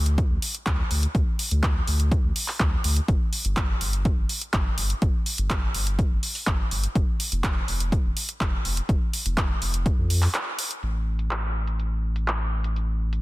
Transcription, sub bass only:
Already playing: D2
0.30 D2
0.66 D2
0.91 D2
1.15 D2
1.51 D2
1.87 D2
2.24 D2
2.60 D2
2.84 D2
3.08 G1
3.45 G1
3.81 G1
4.17 G1
4.54 G1
4.78 G1
5.02 G1
5.38 G1
5.75 G1
6.11 G1
6.47 G1
6.71 G1
6.95 F1
7.32 F1
7.68 F1
8.05 F1
8.41 F1
8.65 F1
8.89 F1
9.25 F1
9.62 F1
9.98 F2
10.83 A1

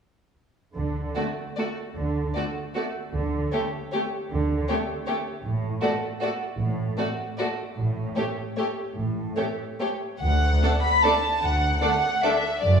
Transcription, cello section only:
0.75 D3
1.97 D3
3.14 D3
4.31 D3
5.44 A2
6.59 A2
7.77 A2
8.96 A2
10.22 D2
11.41 D2
12.63 F#2

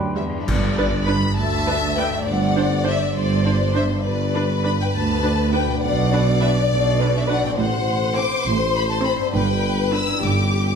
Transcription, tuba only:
Already playing: D2
0.47 G1
1.37 D2
2.26 G1
3.16 G1
4.05 G1
4.94 D2
5.83 B1
6.70 B1
7.58 A1
8.46 A1
9.34 G1
10.22 G1

